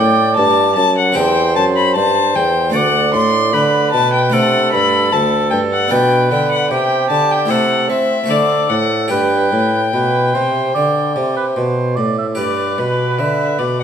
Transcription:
Already playing: A2 A3 A4 D5 G5
0.00 A2
0.36 G2 A5
0.76 F#2 A5
0.98 F#5
1.12 E2 C4 G4 C5 G5
1.16 E2 C5
1.56 F#2 A5
1.76 B5
1.96 G2 C5 A5
2.35 E2 G5
2.70 A3 D4 D5
2.75 D2 D5 F#5
3.14 A2 C6
3.53 D3 B4 B5
3.92 B2 A5
4.13 G5
4.30 C3 A3 D4 A4 D5
4.34 C3 F#5
4.72 G2 B5
5.12 D2 A4 A5
5.51 G2 G5
5.73 F#5
5.88 B2 B3 D4 B4 D5 G5
5.92 B2
6.31 D3 G5
6.52 F#5
6.71 C3 G4 G5
7.10 D3 A5
7.31 G5
7.46 A3 E4 C5
7.50 C3 A4 F#5
7.89 C4 E5
8.24 A3 F#4 C5
8.28 D3 A4 D5
8.70 A2 F#5
9.08 G2 G4 B4 G5
9.52 A2
9.94 B2 B4
10.34 C3 C5
10.74 D3 D5
11.15 C3 D5
11.36 B4
11.56 B2 C5
11.96 A2 D5
12.18 E5
12.35 G2 G4 B4 D5
12.78 B2 B4
13.19 D3 E5
13.59 B2 D5
13.80 F#5

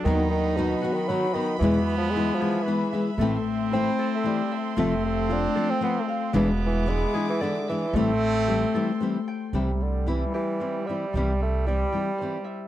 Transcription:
Already playing: A3 D4 F#4 A4 D5
0.04 D#2 D#3 F#3 B3 D#4 F#4 D#5 B5
0.30 D#3
0.56 B2 D#3 B3 D#4 F#4
0.82 D#3 B3 D#4 F#4
0.93 D#3
1.08 D#3 F#3 B3 D#4 F#4 B4
1.33 D#3 B3 D#4 F#4 D#5
1.59 E2 E3 G#3 B3 G#4 E5
1.63 B2 E3 G#3 B3 E4
1.97 F3
2.10 G#3 E4
2.16 E3 G#3 B3 E4
2.35 F3
2.40 E3 G#3 B3 E4 G#4
2.62 E3 B4
2.67 E3 G#3 B3 E4
2.93 E3 G#3 B3 E4 E5
3.18 A1 A2 E3 A3 C4 E4 A4 C6
3.71 E3 A3 C4 E4
3.75 C4
3.99 A4
4.15 A3
4.24 E3 G3 A3 C4 E4 C5
4.52 E5
4.76 F1 F2 C3 F3 A3 C4 F4 F5
5.05 A3
5.29 F3 A3 C4 D4 F4
5.55 F3 A3 C4 F4 A4
5.70 C4
5.81 F3 A3 B3 C4 F4 C5
6.09 F5
6.32 E1 E2 B2 E3 G#3 B3 D4 E4 G#4 E5 D6
6.66 E3
6.86 E3 G#3 D4 E4
7.14 E3 G#3 D4 E4 G#4
7.29 E3
7.41 D3 E3 G#3 D4 E4 D5
7.68 E3 G#3 D4 E4 E5
7.90 A1 C4 A4 G5 C6
7.94 A2 E3 G3 A3 C4 E4
8.47 E3 G3 C4 E4 G4
8.74 E3 G3 C4 E4 A4
9.00 E3 G3 C4 E4 C5
9.28 G5
9.53 C2 C3 E3 G3 C4 E4
9.81 D3 C4
10.06 E3 G3 C4 E4
10.34 E3 G4
10.60 E3 G3 C4 E4 C5
10.87 E3 G3 C4 E4 E5
11.13 C2 C3 E3 G3
11.17 C4 E4
11.40 A3 C4
11.67 E3 G3 C4 E4
11.92 E3 G3 C4 E4 G4
12.18 E3 G3 C5
12.22 C4 E4
12.44 E5

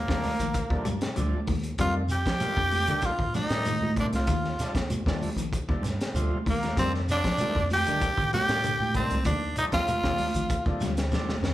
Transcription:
Already playing: A#3 A#4
0.07 D#2 D#3 F3 G3 A3 D4, kick, snare
0.24 snare, open hi-hat, high conga, shekere
0.39 A#1 D#3, closed hi-hat, shekere
0.54 kick, closed hi-hat, shekere
0.70 D#2 F3 G3 A3 D4, kick, low conga
0.85 G2 G3, closed hi-hat, high conga, shekere
1.01 snare, closed hi-hat, shekere
1.16 D2 F3 G3 A3 D4, closed hi-hat, high conga, shekere
1.33 high conga
1.47 D#2 D#3, kick, open hi-hat, high conga, shekere
1.63 closed hi-hat
1.78 F2 D#3 G3 A3 D4 F4 F5, kick, closed hi-hat, low conga, shekere
2.09 G4 G5, closed hi-hat, shekere
2.25 F3, kick, snare, closed hi-hat, shekere
2.40 D#3 G3 A3 F4, closed hi-hat, high conga, shekere
2.57 F2 D3, kick
2.71 open hi-hat, high conga, shekere
2.87 D3 D#3 G3 A3 D4, closed hi-hat, low conga, shekere
3.02 F4, muted fingered electric bass stroke, kick, closed hi-hat, shekere
3.06 F5
3.19 A2, kick, low conga
3.34 F3 D#4, snare, closed hi-hat, high conga, shekere
3.39 D#5
3.50 A2 D#3 G3 A3 D4, snare, closed hi-hat, shekere
3.65 D#3, closed hi-hat, high conga, shekere
3.81 A2, high conga
3.96 C3 D#3 G3 A3 C4 D4, kick, closed hi-hat, shekere
4.01 D5
4.13 C2 F4 F5, snare, closed hi-hat, high conga
4.27 D#2 D#3, kick, closed hi-hat, low conga, shekere
4.44 snare
4.59 F3 G3 A3 D4, snare, closed hi-hat, shekere
4.74 D#2 F3, kick, snare, closed hi-hat, shekere
4.90 closed hi-hat, high conga, shekere
5.06 D#2 D#3 F3 G3 A3 D4, kick, snare
5.22 open hi-hat, high conga, shekere
5.36 A#1 D#3, closed hi-hat, shekere
5.53 kick, closed hi-hat, shekere
5.68 D#2 F3 G3 A3 D4, kick, low conga
5.83 G2, snare, closed hi-hat, high conga, shekere
6.01 snare, closed hi-hat, shekere
6.14 D2 F3 G3 A3 F4, closed hi-hat, high conga, shekere
6.31 high conga
6.46 D#2 D#3 A#3 A#4, kick, open hi-hat, high conga, shekere
6.63 snare, closed hi-hat, high conga
6.77 F2 D#3 G3 A3 C4 D4 C5, kick, closed hi-hat, low conga, shekere
6.94 snare
7.09 D4 D5, snare, closed hi-hat, shekere
7.24 F3, kick, snare, closed hi-hat, shekere
7.38 D#3 G3 A3 C4, closed hi-hat, high conga, shekere
7.55 F2 D3, kick
7.69 open hi-hat, high conga, shekere
7.73 G4 G5
7.86 D3 D#3 G3 A3 D4, closed hi-hat, low conga, shekere
8.01 muted fingered electric bass stroke, kick, closed hi-hat, shekere
8.17 A2, kick, low conga
8.33 F3 G4 G5, snare, closed hi-hat, high conga, shekere
8.48 A2 D#3 G3 A3 D4, snare, closed hi-hat, shekere
8.64 D3, closed hi-hat, shekere
8.80 A2, high conga
8.94 C3 D#3 G3 A3 C4 D4 C5, kick, closed hi-hat, high conga, shekere
9.10 C2, closed hi-hat, high conga
9.24 D#2 F3 D4 D5, kick, closed hi-hat, low conga, shekere
9.56 F3 G3 A3 D4 D#4 D#5, closed hi-hat, shekere
9.72 D#2 F3 F4 F5, kick, snare, closed hi-hat, shekere
9.88 closed hi-hat, high conga, shekere
10.04 D#2 D#3 F3 G3 A3 D4, kick, snare
10.18 open hi-hat, high conga, shekere
10.34 A#1 D#3, closed hi-hat, low conga, shekere
10.50 kick, closed hi-hat, shekere
10.66 D#2 F3 G3 A3 D4, kick, low conga
10.81 D2 G3, snare, closed hi-hat, high conga, shekere
10.97 snare, closed hi-hat, shekere
11.11 D#2 F3 G3 A3 D4, snare, high conga, shekere
11.29 snare, high conga
11.43 F2 D#3, snare, shekere

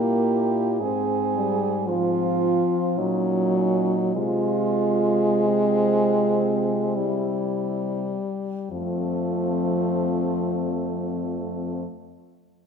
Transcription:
Already playing: A#2 A#3 E4 G4
0.81 G#2 C4 G#4
1.35 G3
1.88 F3 C4 F4
2.98 A#2 F#3 C#4 D#4
3.56 C#4 D#4
4.16 C3 G#3 F4
5.48 C4
6.95 G3 E4
8.70 F2 F3 A3 C4

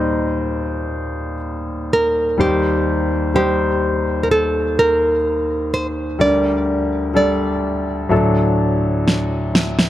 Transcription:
Already playing: D#2 A#2 G3 D#4 C5 D5 D#5
1.93 A#4
2.38 D#2 D#3 G3 D#4 G4 C5
3.34 G3 D#4 G4 C5
4.23 A#4
4.31 A4
4.79 A#4
5.74 C5
6.19 D2 D3 G3 D4 A#4 D5
7.14 G3 D4 A4 D5
8.09 D2 A2 F#3 D4 A4
9.08 snare
9.55 snare
9.79 snare

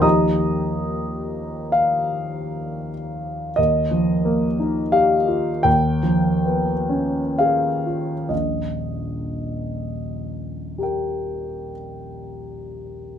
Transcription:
Already playing: D#2
0.00 F3 A#3 D#4 G4 D#5 A#5 D#6
1.72 F5
3.56 D#2 D#5
3.91 F3
4.25 A#3
4.59 D#4
4.92 G4 F5
5.28 F4
5.63 D#2 G5
6.03 F3
6.46 B3
6.89 C#4
7.38 G#4 F5
7.86 F4
8.29 D#1 A#1 D#5
10.78 G4 A#4
10.83 G5

